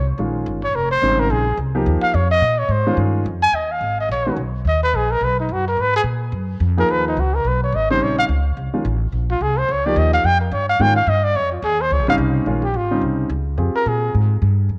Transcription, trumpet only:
0.64 0.77 C#5 loud
0.76 0.91 A#4 medium
0.91 1.22 C5 loud
1.20 1.33 A#4 medium
1.31 1.59 G#4 medium
2.03 2.17 F5 loud
2.15 2.31 C#5 medium
2.31 2.60 D#5 loud
2.59 2.73 C#5 loud
2.72 2.99 C5 medium
3.43 3.57 G#5 loud
3.55 3.73 D#5 loud
3.71 3.99 F5 loud
4.01 4.10 D#5 medium
4.12 4.37 C#5 medium
4.68 4.83 D#5 medium
4.84 4.98 B4 loud
4.96 5.13 G#4 medium
5.12 5.26 A#4 loud
5.24 5.40 B4 medium
5.40 5.54 D#4 medium
5.53 5.68 F#4 medium
5.68 5.82 A#4 medium
5.81 5.96 B4 loud
5.96 6.02 G#4 loud
6.79 6.93 A#4 loud
6.91 7.07 B4 loud
7.08 7.22 D#4 medium
7.20 7.37 F#4 medium
7.36 7.49 A#4 medium
7.48 7.63 B4 medium
7.64 7.77 C#5 medium
7.76 7.90 D#5 loud
7.91 8.05 C5 medium
8.03 8.18 C#5 medium
8.19 8.25 F5 loud
9.31 9.44 F4 medium
9.42 9.60 G#4 medium
9.59 9.73 C5 medium
9.72 9.87 C#5 medium
9.86 10.00 D5 medium
9.98 10.13 D#5 medium
10.14 10.27 F5 loud
10.26 10.41 G5 loud
10.41 10.54 A#4 medium
10.53 10.69 C#5 loud
10.70 10.83 F5 loud
10.82 10.96 G5 loud
10.96 11.11 F5 loud
11.09 11.26 D#5 loud
11.24 11.38 D5 loud
11.36 11.52 C#5 loud
11.52 11.65 F4 medium
11.64 11.83 G#4 medium
11.81 11.94 C5 loud
11.93 12.09 C#5 medium
12.10 12.16 F5 loud
12.64 12.78 G4 medium
12.77 13.04 F4 medium
13.76 13.90 A#4 loud
13.88 14.15 G#4 medium

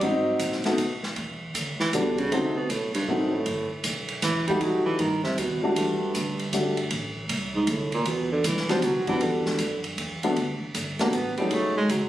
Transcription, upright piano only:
0.02 0.60 C4 medium
0.02 0.60 D#4 medium
0.02 0.60 F#4 medium
0.65 0.77 A3 medium
0.65 0.77 B3 medium
0.65 0.77 D#4 medium
0.65 0.77 F#4 medium
1.94 2.16 G3 medium
1.94 2.16 B3 soft
1.94 2.16 D4 soft
1.94 2.16 F#4 medium
2.32 2.54 A3 medium
2.32 2.54 C4 soft
2.32 2.54 D#4 soft
2.32 2.54 F#4 medium
3.08 3.31 A3 medium
3.08 3.31 C4 soft
3.08 3.31 D#4 soft
3.08 3.31 F#4 medium
4.49 4.98 G3 medium
4.49 4.98 A3 medium
4.49 4.98 D#4 medium
4.49 4.98 F#4 medium
5.63 6.12 G3 medium
5.63 6.12 A3 medium
5.63 6.12 D4 medium
5.63 6.13 F#4 medium
6.53 6.76 G3 medium
6.53 6.76 A3 soft
6.53 6.76 D4 medium
6.53 6.76 F#4 medium
8.69 8.82 G3 medium
8.69 8.82 B3 medium
8.69 8.82 D4 medium
8.69 8.82 F#4 medium
9.08 9.57 G3 medium
9.08 9.57 B3 medium
9.08 9.57 D4 medium
9.08 9.57 F#4 medium
10.24 10.36 G2 medium
10.24 10.36 A3 medium
10.24 10.35 B3 medium
10.24 10.35 D4 medium
10.24 10.36 F#4 medium
11.00 11.12 G3 medium
11.00 11.12 A3 medium
11.00 11.12 B3 medium
11.00 11.12 D4 medium
11.00 11.12 F#4 medium
11.39 11.88 F#3 medium
11.39 11.88 A3 medium
11.39 11.88 C#4 medium
11.39 11.88 D#4 soft
11.39 11.88 G#4 medium

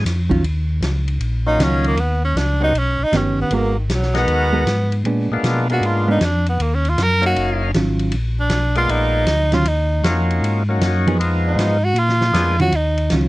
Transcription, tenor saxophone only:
1.47 1.65 D#4 medium
1.64 1.87 C#4 medium
1.87 2.02 A#3 medium
2.00 2.24 B3 medium
2.25 2.39 C#4 medium
2.38 2.63 D4 medium
2.64 2.80 D#4 loud
2.79 3.05 C#4 medium
3.04 3.18 D#4 loud
3.17 3.41 C#4 medium
3.41 3.56 B3 medium
3.54 3.78 A#3 medium
3.79 3.95 D#3 soft
3.94 4.17 F#3 medium
4.18 5.03 B3 loud
5.73 5.87 F#4 medium
5.86 6.09 F4 medium
6.11 6.26 D#4 medium
6.24 6.48 D4 medium
6.49 6.63 B3 medium
6.62 6.76 A#3 medium
6.74 6.91 C#4 medium
6.89 7.04 F4 medium
7.03 7.25 A#4 loud
7.26 7.72 F#4 loud
8.40 8.75 D4 medium
8.77 8.92 F4 loud
8.90 9.56 D#4 loud
9.54 9.70 F4 loud
9.68 10.05 D#4 medium
11.47 11.86 D#4 medium
11.84 12.01 F#4 loud
11.99 12.60 F4 loud
12.61 12.77 F#4 loud
12.76 13.13 D#4 medium

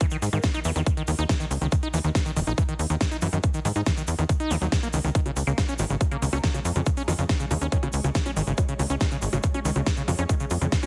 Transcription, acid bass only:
0.01 0.06 E3 medium
0.11 0.17 D#3 medium
0.33 0.38 D#3 medium
0.44 0.47 D#3 loud
0.54 0.60 D#4 medium
0.65 0.70 E3 medium
0.76 0.81 D#3 medium
0.97 1.02 D#3 medium
1.08 1.11 D#3 medium
1.19 1.24 D#4 medium
1.29 1.35 E3 medium
1.40 1.45 D#3 medium
1.62 1.67 D#3 medium
1.72 1.75 D#3 loud
1.83 1.88 D#4 medium
1.94 1.99 E3 medium
2.04 2.10 D#3 medium
2.26 2.31 D#3 medium
2.37 2.40 D#3 loud
2.47 2.52 D#4 medium
2.58 2.63 E3 medium
2.69 2.74 D#3 medium
2.90 2.95 D#3 medium
3.01 3.04 D#3 loud
3.11 3.17 D#4 medium
3.22 3.27 E3 medium
3.33 3.38 D#3 medium
3.54 3.60 D#3 medium
3.65 3.68 D#3 loud
3.76 3.81 D#4 medium
3.86 3.92 E3 medium
3.97 4.02 D#3 medium
4.19 4.24 D#3 medium
4.29 4.32 D#3 loud
4.40 4.52 D#4 medium
4.51 4.56 D#3 loud
4.61 4.67 F#3 medium
4.83 4.88 A#3 medium
4.94 4.99 D#3 medium
5.04 5.10 D#3 medium
5.15 5.20 D#3 medium
5.26 5.31 C#3 medium
5.47 5.52 C#3 medium
5.58 5.61 C#3 loud
5.69 5.74 C#4 medium
5.79 5.85 D#3 medium
5.90 5.95 C#3 medium
6.12 6.17 C#3 medium
6.22 6.25 C#3 loud
6.33 6.38 C#4 medium
6.44 6.49 D#3 medium
6.54 6.60 C#3 medium
6.76 6.81 C#3 medium
6.86 6.90 C#3 loud
6.97 7.02 C#4 medium
7.08 7.13 D#3 medium
7.19 7.24 C#3 medium
7.40 7.45 C#3 medium
7.51 7.54 C#3 loud
7.62 7.67 C#4 medium
7.72 7.77 D#3 medium
7.83 7.88 C#3 medium
8.04 8.10 C#3 medium
8.15 8.18 C#3 loud
8.26 8.31 C#4 medium
8.37 8.42 D#3 medium
8.47 8.52 C#3 medium
8.69 8.74 C#3 medium
8.79 8.83 C#3 loud
8.90 8.95 C#4 medium
9.01 9.06 D#3 medium
9.12 9.17 C#3 medium
9.33 9.38 C#3 medium
9.44 9.47 C#3 loud
9.54 9.60 C#4 medium
9.65 9.70 D#3 medium
9.76 9.81 C#3 medium
9.97 10.02 C#3 medium
10.08 10.11 C#3 loud
10.19 10.24 C#4 medium
10.29 10.35 D#3 medium
10.40 10.45 C#3 medium
10.62 10.67 C#3 medium
10.72 10.75 C#3 loud
10.83 10.86 C#4 medium

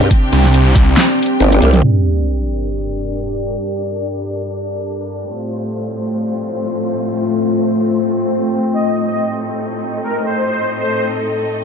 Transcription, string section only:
0.00 1.80 C3 medium
0.00 1.80 C4 medium
0.00 1.80 D4 medium
0.00 1.80 G4 medium
0.00 1.80 G5 medium
1.84 5.25 G2 medium
1.84 5.25 G3 medium
1.84 5.25 D4 medium
1.84 5.25 A#4 medium
1.84 5.25 D5 medium
5.29 8.71 A2 medium
5.29 11.64 A3 medium
5.29 11.64 C4 medium
5.29 8.71 F4 medium
5.29 8.71 C5 medium
8.74 11.64 A2 medium
8.74 11.64 D#4 medium
8.74 11.64 D#5 medium

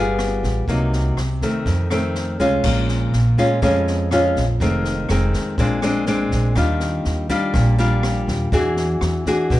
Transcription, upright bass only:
0.00 0.39 G1 medium
0.43 0.66 A1 medium
0.68 1.14 C2 medium
1.17 1.40 C2 medium
1.66 2.36 F2 medium
2.40 2.63 C2 medium
2.64 3.10 A#1 medium
3.14 3.36 A#1 medium
3.62 4.32 F2 medium
4.36 4.59 A#1 medium
4.60 5.06 F1 loud
5.10 5.32 F1 medium
5.58 6.28 A#1 medium
6.32 6.55 A#1 medium
6.56 7.02 D#2 loud
7.06 7.28 D#2 medium
7.54 8.24 A#1 medium
8.28 8.51 D#2 medium
8.52 8.98 E2 loud
9.02 9.24 E2 medium
9.51 9.60 B1 medium

